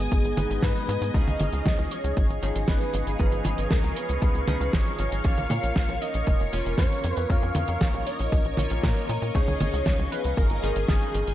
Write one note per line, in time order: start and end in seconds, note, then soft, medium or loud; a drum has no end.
0.00 0.34 G#3 medium
0.00 0.34 B3 medium
0.00 1.10 B3 medium
0.00 0.34 D#4 medium
0.00 0.62 G#4 loud
0.00 0.34 B4 medium
0.00 5.21 D#5 medium
0.00 1.10 G#5 medium
0.00 1.10 D#6 medium
0.12 0.21 G#1 loud
0.12 kick loud
0.12 closed hi-hat medium
0.25 0.34 G#1 medium
0.25 closed hi-hat soft
0.37 0.47 G#1 loud
0.37 1.11 G#3 medium
0.37 1.11 B3 medium
0.37 1.11 D#4 medium
0.37 1.11 B4 loud
0.37 closed hi-hat loud
0.37 high tom medium
0.50 0.60 G#1 medium
0.50 closed hi-hat medium
0.63 0.72 G#2 loud
0.63 1.16 B4 loud
0.63 kick loud
0.63 snare loud
0.63 closed hi-hat medium
0.76 closed hi-hat soft
0.89 0.98 G#2 medium
0.89 closed hi-hat loud
1.01 1.11 G#2 medium
1.01 closed hi-hat medium
1.14 1.24 C#2 loud
1.14 2.39 F3 medium
1.14 2.39 C#4 medium
1.14 2.39 D#4 medium
1.14 2.39 G#4 medium
1.14 5.21 G#4 medium
1.14 1.93 D#5 loud
1.14 7.26 F5 medium
1.14 11.34 C#6 loud
1.14 kick loud
1.14 closed hi-hat medium
1.27 1.36 C#2 medium
1.27 closed hi-hat soft
1.27 high tom medium
1.40 1.49 G#1 medium
1.40 closed hi-hat medium
1.40 high tom medium
1.53 1.62 C#2 medium
1.53 closed hi-hat medium
1.66 1.75 C#2 loud
1.66 kick loud
1.66 snare loud
1.66 closed hi-hat medium
1.78 1.88 C#2 medium
1.78 closed hi-hat soft
1.91 2.43 C#5 loud
1.91 closed hi-hat loud
2.04 2.13 C#2 medium
2.04 closed hi-hat medium
2.17 2.26 G#1 loud
2.17 kick loud
2.17 closed hi-hat medium
2.30 2.39 G#1 medium
2.30 closed hi-hat soft
2.42 2.52 G#1 medium
2.42 3.16 F3 medium
2.42 3.16 C#4 medium
2.42 3.16 D#4 medium
2.42 3.16 G#4 loud
2.42 closed hi-hat loud
2.55 2.65 G#1 medium
2.55 closed hi-hat medium
2.68 2.78 G#1 loud
2.68 3.16 B4 medium
2.68 kick loud
2.68 snare loud
2.68 closed hi-hat medium
2.81 closed hi-hat soft
2.94 3.03 G#1 loud
2.94 closed hi-hat medium
3.07 3.16 G#1 medium
3.07 closed hi-hat medium
3.19 3.29 G#1 loud
3.19 4.45 F3 medium
3.19 4.45 C#4 medium
3.19 4.45 D#4 medium
3.19 4.45 G#4 medium
3.19 3.67 B4 medium
3.19 kick loud
3.19 closed hi-hat medium
3.32 3.42 G#1 medium
3.32 closed hi-hat soft
3.45 3.54 G#1 medium
3.45 closed hi-hat loud
3.45 high tom medium
3.58 3.67 G#1 medium
3.58 closed hi-hat medium
3.71 3.80 C#2 loud
3.71 3.98 A#4 medium
3.71 kick loud
3.71 snare loud
3.71 closed hi-hat medium
3.83 3.93 C#2 medium
3.83 closed hi-hat soft
3.96 4.75 B4 loud
3.96 closed hi-hat loud
4.09 4.19 C#2 medium
4.09 closed hi-hat medium
4.22 4.31 C#2 loud
4.22 kick loud
4.22 closed hi-hat medium
4.35 4.44 C#2 medium
4.35 closed hi-hat soft
4.48 4.57 C#2 medium
4.48 5.21 F3 loud
4.48 5.21 C#4 medium
4.48 5.21 D#4 medium
4.48 5.21 G#4 loud
4.48 closed hi-hat medium
4.48 high tom medium
4.60 4.70 C#2 medium
4.60 closed hi-hat medium
4.73 4.83 G#1 loud
4.73 5.26 C#5 loud
4.73 kick loud
4.73 snare loud
4.73 closed hi-hat medium
4.86 closed hi-hat soft
4.99 5.08 G#1 medium
4.99 closed hi-hat medium
5.12 5.21 G#1 medium
5.12 closed hi-hat medium
5.24 5.34 A#1 loud
5.24 6.50 A#3 medium
5.24 6.50 C#4 medium
5.24 6.50 F4 medium
5.24 9.31 A#4 medium
5.24 9.31 C#5 medium
5.24 6.50 C#5 medium
5.24 6.03 F5 loud
5.24 kick loud
5.24 closed hi-hat medium
5.37 5.47 A#1 medium
5.37 closed hi-hat soft
5.37 high tom medium
5.50 5.60 A#2 loud
5.50 closed hi-hat loud
5.50 high tom medium
5.63 5.72 A#1 medium
5.63 closed hi-hat medium
5.76 5.85 A#1 loud
5.76 kick loud
5.76 snare loud
5.76 closed hi-hat medium
5.89 5.98 A#1 medium
5.89 closed hi-hat soft
6.02 6.53 D#5 loud
6.02 closed hi-hat loud
6.14 6.24 A#1 medium
6.14 closed hi-hat medium
6.27 6.37 F1 loud
6.27 kick loud
6.27 closed hi-hat medium
6.40 6.49 F1 medium
6.40 closed hi-hat soft
6.53 6.62 F1 medium
6.53 7.27 A#3 medium
6.53 7.27 C#4 medium
6.53 7.27 F4 medium
6.53 7.27 C#5 loud
6.53 closed hi-hat medium
6.66 6.75 F1 medium
6.66 closed hi-hat medium
6.78 6.88 F2 loud
6.78 7.17 C#5 loud
6.78 kick loud
6.78 snare loud
6.78 closed hi-hat medium
6.92 closed hi-hat soft
7.04 7.13 F2 medium
7.04 closed hi-hat loud
7.17 7.26 F2 medium
7.17 7.31 B4 loud
7.17 closed hi-hat medium
7.30 7.39 F2 loud
7.30 8.55 A#3 medium
7.30 8.55 C#4 medium
7.30 8.55 F4 medium
7.30 8.55 C#5 medium
7.30 11.34 D#5 medium
7.30 8.06 F5 loud
7.30 kick loud
7.30 closed hi-hat medium
7.42 7.52 F2 medium
7.42 closed hi-hat soft
7.55 7.65 F2 loud
7.55 closed hi-hat loud
7.55 high tom medium
7.68 7.78 F2 medium
7.68 closed hi-hat medium
7.81 7.90 A#1 loud
7.81 kick loud
7.81 snare loud
7.81 closed hi-hat medium
7.94 8.03 A#1 medium
7.94 closed hi-hat soft
8.07 8.54 D#5 loud
8.07 closed hi-hat medium
8.19 8.29 A#1 medium
8.19 closed hi-hat medium
8.32 8.42 A#1 loud
8.32 kick loud
8.32 closed hi-hat medium
8.45 8.54 A#1 medium
8.45 closed hi-hat soft
8.57 8.67 A#1 medium
8.57 9.32 A#3 medium
8.57 9.32 C#4 medium
8.57 9.32 F4 medium
8.57 9.32 C#5 loud
8.57 closed hi-hat medium
8.57 high tom medium
8.70 8.80 A#1 medium
8.70 closed hi-hat medium
8.83 8.93 A#2 loud
8.83 9.31 A#4 loud
8.83 kick loud
8.83 snare loud
8.83 closed hi-hat medium
8.97 closed hi-hat soft
9.09 9.19 A#2 loud
9.09 closed hi-hat medium
9.22 9.31 A#2 medium
9.22 closed hi-hat medium
9.35 9.44 C#2 loud
9.35 10.60 F3 medium
9.35 10.60 C#4 medium
9.35 10.60 D#4 medium
9.35 10.60 G#4 medium
9.35 11.34 G#4 medium
9.35 10.08 C#5 loud
9.35 11.34 F5 medium
9.35 kick loud
9.35 closed hi-hat medium
9.48 9.57 C#2 medium
9.48 closed hi-hat soft
9.48 high tom medium
9.60 9.70 G#1 medium
9.60 closed hi-hat medium
9.60 high tom medium
9.73 9.83 C#2 medium
9.73 closed hi-hat medium
9.86 9.95 C#2 loud
9.86 kick loud
9.86 snare loud
9.86 closed hi-hat medium
9.98 10.08 C#2 medium
9.98 closed hi-hat soft
10.12 10.36 B4 loud
10.12 closed hi-hat loud
10.24 10.34 C#2 medium
10.24 closed hi-hat medium
10.37 10.47 G#1 loud
10.37 10.85 A#4 loud
10.37 kick loud
10.37 closed hi-hat medium
10.50 10.60 G#1 medium
10.50 closed hi-hat soft
10.63 10.72 G#1 medium
10.63 11.34 F3 medium
10.63 11.34 C#4 medium
10.63 11.34 D#4 medium
10.63 11.34 G#4 loud
10.63 closed hi-hat loud
10.76 10.85 G#1 medium
10.76 closed hi-hat medium
10.88 10.98 G#1 loud
10.88 11.34 G#4 loud
10.88 kick loud
10.88 snare loud
10.88 closed hi-hat medium
11.02 closed hi-hat soft
11.14 11.24 G#1 medium
11.14 closed hi-hat medium
11.27 11.34 G#1 medium
11.27 closed hi-hat medium